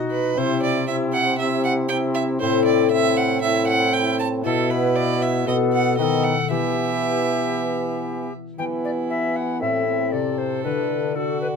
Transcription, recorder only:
0.00 0.36 F#4 medium
0.36 0.86 E4 medium
0.88 1.38 E4 medium
1.40 1.89 E4 medium
1.91 2.40 E4 medium
2.41 2.91 E4 medium
2.92 3.42 E4 medium
3.43 4.18 E4 medium
4.44 5.48 E4 medium
5.46 5.98 A4 medium
5.99 6.52 A4 medium
5.99 6.04 B4 medium
6.51 8.33 G4 medium
8.59 8.65 G5 medium
8.85 8.91 D5 medium
9.10 9.38 E5 medium
9.36 9.61 F#5 medium
9.61 10.14 E5 medium
10.12 10.40 D5 medium
10.38 10.64 C5 medium
10.64 11.17 B4 medium
11.16 11.40 A4 medium
11.41 11.47 B4 medium

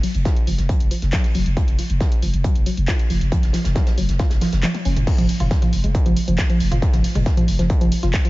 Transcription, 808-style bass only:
0.15 0.25 F1 medium
0.47 0.58 F1 loud
0.58 0.69 F1 medium
0.80 0.91 F1 medium
1.02 1.13 F1 medium
1.35 1.45 F1 loud
1.46 1.57 F1 medium
1.68 1.78 F1 medium
1.90 2.00 F1 medium
2.22 2.33 F1 loud
2.34 2.44 F1 medium
2.55 2.66 F1 medium
2.77 2.88 F1 medium
3.10 3.21 F1 loud
3.21 3.32 F1 medium
3.43 3.54 F1 medium
3.65 3.75 F1 medium
3.98 4.08 F1 loud
4.09 4.19 F1 medium
4.31 4.41 F1 medium
4.53 4.63 F1 medium
4.85 4.96 F1 loud
4.96 5.07 F1 medium
5.18 5.29 F1 medium
5.40 5.51 F1 medium
5.73 5.83 F1 loud
5.84 5.94 F1 medium
6.06 6.16 F1 medium
6.28 6.38 F1 medium
6.60 6.71 F1 loud
6.72 6.82 F1 medium
6.93 7.04 F1 medium
7.15 7.26 F1 medium
7.48 7.59 F1 loud
7.59 7.70 F1 medium
7.81 7.92 F1 medium
8.03 8.13 F1 medium

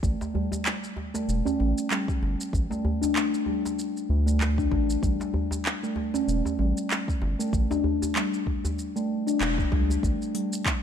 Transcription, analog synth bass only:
0.03 0.17 A1 loud
1.28 1.42 E1 loud
1.60 1.73 A1 loud
2.22 2.36 G1 medium
2.53 2.67 A1 loud
4.10 4.67 D2 medium
4.71 4.97 A1 medium
5.03 5.17 A1 loud
6.28 6.42 E1 medium
6.59 6.73 A1 loud
7.21 7.35 G1 medium
7.53 7.67 A1 loud
9.41 9.66 E1 medium
9.72 9.97 C#2 medium
10.03 10.17 A1 loud

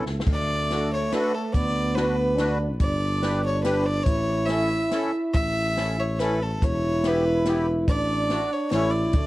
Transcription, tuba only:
0.05 0.24 C#2 medium
0.26 1.09 D2 medium
1.54 2.81 D2 medium
2.80 4.08 G1 loud
4.06 4.89 A1 medium
5.34 6.64 A1 medium
6.62 7.89 E1 medium
7.88 8.43 A1 medium
8.71 9.15 A1 loud
9.13 9.27 D2 medium

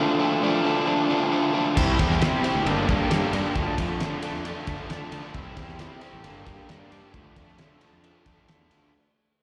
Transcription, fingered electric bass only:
1.77 1.95 C2 loud
1.99 2.23 E2 medium
2.21 2.39 C3 loud
2.55 2.64 D2 medium
2.65 2.83 G1 medium
2.89 2.98 G2 medium
3.11 3.20 G2 medium
3.33 3.42 G2 loud
3.56 3.73 D2 medium
3.78 4.02 F2 medium
4.00 4.18 D3 loud
4.34 4.51 F2 medium
4.67 4.76 D3 medium
4.90 4.99 D3 medium
5.12 5.21 D3 loud
5.34 5.52 C2 loud
5.57 5.81 E2 medium
5.79 5.97 C3 loud
6.13 6.22 A1 medium
6.24 6.42 G1 medium
6.47 6.55 G2 medium
6.69 6.78 G2 medium
6.92 7.00 G2 loud
7.14 7.31 D2 loud
7.36 7.60 F2 medium
7.58 7.76 D3 loud
7.92 8.09 F2 medium
8.26 8.46 F2 medium
8.48 8.68 E2 medium
8.71 8.90 D2 medium

